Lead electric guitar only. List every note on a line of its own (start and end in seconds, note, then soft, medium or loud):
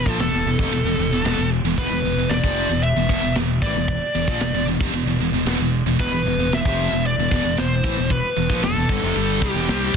0.00 0.11 B4 loud
0.11 0.21 A4 loud
0.21 1.48 A4 medium
1.79 2.33 B4 medium
2.30 2.82 D5 medium
2.83 3.32 E5 loud
3.62 4.64 D5 loud
6.01 6.55 B4 loud
6.54 7.02 E5 loud
7.06 7.60 D5 loud
7.59 8.11 C5 medium
8.11 8.63 B4 loud
8.64 9.50 A4 medium
9.50 9.91 G4 medium